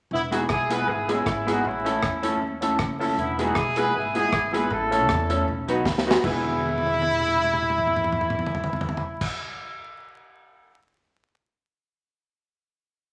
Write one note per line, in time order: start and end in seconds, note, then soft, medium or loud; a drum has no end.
0.11 0.44 E1 loud
0.11 0.23 B3 medium
0.11 0.22 E4 medium
0.31 0.46 G#3 medium
0.31 0.45 B3 medium
0.31 0.46 B3 medium
0.31 0.41 D#4 medium
0.31 0.45 E4 medium
0.31 0.46 E4 loud
0.31 0.40 F#4 medium
0.31 0.46 G#4 loud
0.31 0.46 G#4 medium
0.31 closed hi-hat medium
0.49 0.82 B1 medium
0.49 0.70 E4 medium
0.49 0.70 G#4 loud
0.49 kick loud
0.49 cross-stick loud
0.69 0.84 G#3 medium
0.69 0.84 B3 medium
0.69 0.85 E4 medium
0.69 0.84 E4 medium
0.69 0.84 G#4 medium
0.69 0.85 G#4 medium
0.69 0.87 G#4 medium
0.69 0.88 B4 loud
0.69 closed hi-hat medium
0.88 1.21 G#1 medium
0.88 1.09 E4 medium
0.88 1.09 G#4 loud
1.08 1.23 G#3 medium
1.08 1.22 B3 medium
1.08 1.23 B3 medium
1.08 1.48 C#4 medium
1.08 1.22 E4 medium
1.08 1.23 E4 medium
1.08 1.48 E4 medium
1.08 1.22 G#4 medium
1.08 1.24 G#4 medium
1.08 closed hi-hat medium
1.26 1.59 G#1 medium
1.26 kick loud
1.26 cross-stick loud
1.46 1.61 G#3 medium
1.46 1.60 B3 medium
1.46 1.61 B3 medium
1.46 1.66 D#4 medium
1.46 1.60 E4 medium
1.46 1.61 E4 medium
1.46 1.65 F#4 medium
1.46 1.61 G#4 loud
1.46 1.62 G#4 medium
1.46 closed hi-hat medium
1.65 1.97 A1 loud
1.65 2.42 C#4 medium
1.65 2.42 E4 medium
1.84 1.99 A3 medium
1.84 1.98 C#4 medium
1.84 2.00 C#4 medium
1.84 1.98 E4 medium
1.84 2.00 E4 medium
1.84 1.99 A4 medium
1.84 2.00 A4 medium
1.84 closed hi-hat medium
2.03 2.36 E2 medium
2.03 kick loud
2.03 cross-stick loud
2.23 2.38 A3 medium
2.23 2.37 C#4 medium
2.23 2.38 C#4 medium
2.23 2.37 E4 medium
2.23 2.38 E4 medium
2.23 2.37 A4 medium
2.23 2.39 A4 medium
2.23 closed hi-hat medium
2.42 2.74 D#2 medium
2.61 2.76 A3 medium
2.61 2.75 C#4 medium
2.61 2.77 C#4 medium
2.61 2.75 E4 medium
2.61 2.77 E4 medium
2.61 2.76 A4 medium
2.61 2.77 A4 medium
2.61 closed hi-hat medium
2.79 3.12 F#1 medium
2.79 kick loud
2.79 cross-stick loud
2.99 3.15 A3 medium
2.99 3.13 C#4 medium
2.99 3.15 C#4 medium
2.99 3.14 E4 medium
2.99 3.16 E4 medium
2.99 3.14 A4 loud
2.99 3.16 A4 medium
2.99 open hi-hat medium
3.17 3.50 E1 loud
3.17 3.38 B3 medium
3.17 3.38 E4 medium
3.17 hi-hat pedal medium
3.38 3.53 G#3 medium
3.38 3.51 B3 medium
3.38 3.54 B3 loud
3.38 3.57 D#4 medium
3.38 3.52 E4 medium
3.38 3.54 E4 loud
3.38 3.57 F#4 medium
3.38 3.52 G#4 medium
3.38 3.54 G#4 loud
3.38 closed hi-hat medium
3.55 3.89 B1 medium
3.55 3.77 E4 medium
3.55 3.77 G#4 loud
3.55 kick loud
3.55 cross-stick loud
3.76 3.91 G#3 medium
3.76 3.90 B3 medium
3.76 3.92 B3 medium
3.76 3.90 E4 medium
3.76 3.92 E4 medium
3.76 3.91 G#4 medium
3.76 3.94 G#4 medium
3.76 3.92 G#4 medium
3.76 3.95 B4 loud
3.76 closed hi-hat medium
3.94 4.27 G#1 medium
3.94 4.15 E4 medium
3.94 4.14 G#4 medium
4.14 4.30 G#3 medium
4.14 4.28 B3 medium
4.14 4.30 B3 medium
4.14 4.28 E4 medium
4.14 4.51 E4 medium
4.14 4.30 E4 medium
4.14 4.29 G#4 loud
4.14 4.51 G#4 loud
4.14 4.30 G#4 loud
4.14 closed hi-hat medium
4.32 4.65 G#1 medium
4.32 kick loud
4.32 cross-stick loud
4.52 4.67 G#3 medium
4.52 4.66 B3 medium
4.52 4.68 B3 medium
4.52 4.66 E4 medium
4.52 4.68 E4 medium
4.52 4.67 G#4 medium
4.52 4.72 G#4 medium
4.52 4.68 G#4 medium
4.52 4.72 B4 medium
4.52 closed hi-hat medium
4.70 5.10 A1 loud
4.70 5.48 E4 medium
4.70 5.48 A4 medium
4.91 5.06 A3 medium
4.91 5.04 C#4 medium
4.91 5.06 C#4 loud
4.91 5.05 E4 medium
4.91 5.07 E4 medium
4.91 5.05 A4 medium
4.91 5.07 A4 medium
4.91 closed hi-hat medium
5.09 5.42 E2 loud
5.09 kick loud
5.09 cross-stick loud
5.29 5.44 A3 medium
5.29 5.43 C#4 medium
5.29 5.44 C#4 medium
5.29 5.43 E4 medium
5.29 5.45 E4 medium
5.29 5.43 A4 medium
5.29 5.45 A4 medium
5.29 closed hi-hat medium
5.48 5.86 B1 medium
5.68 5.82 F#3 medium
5.68 5.82 B3 medium
5.68 5.81 D#4 medium
5.68 5.83 D#4 medium
5.68 5.82 F#4 medium
5.68 5.83 F#4 medium
5.68 5.82 B4 medium
5.68 closed hi-hat medium
5.85 6.18 D#2 medium
5.85 kick loud
5.85 snare medium
5.98 snare medium
6.06 6.20 F#3 medium
6.06 6.20 B3 medium
6.06 6.20 D#4 medium
6.06 6.21 D#4 medium
6.06 6.20 F#4 medium
6.06 6.21 F#4 loud
6.06 6.20 B4 medium
6.11 snare loud
6.22 9.24 E1 medium
6.22 9.72 G#3 medium
6.22 9.74 B3 medium
6.22 9.24 E4 medium
6.22 9.75 E4 medium
6.22 9.25 E4 loud
6.22 9.25 G#4 medium
6.22 9.25 B4 medium
6.22 kick loud
6.22 crash loud
6.27 9.77 G#4 medium
6.45 high tom soft
6.52 high tom soft
6.60 high tom medium
6.69 high tom medium
6.78 high tom medium
6.87 high tom medium
6.94 high tom medium
7.02 high tom medium
7.11 mid tom medium
7.20 mid tom soft
7.28 mid tom medium
7.36 mid tom medium
7.44 mid tom medium
7.54 mid tom medium
7.62 mid tom medium
7.70 mid tom medium
7.78 mid tom medium
7.87 mid tom medium
7.96 mid tom medium
8.04 mid tom medium
8.12 mid tom medium
8.21 mid tom medium
8.30 mid tom medium
8.39 mid tom medium
8.46 floor tom medium
8.55 floor tom medium
8.64 floor tom medium
8.73 floor tom medium
8.81 floor tom medium
8.89 floor tom medium
8.97 floor tom medium
9.21 kick loud
9.21 crash loud